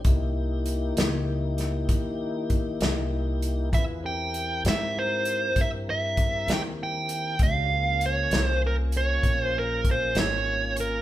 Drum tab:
HH |x-xx-xx-xx-x|x-xx-xx-xx-x|x-xx-xx-xx-x|
SD |---o-o---o--|---o-----o--|---o-----o--|
BD |o-----o-o---|o-----o-o---|o-----o-o---|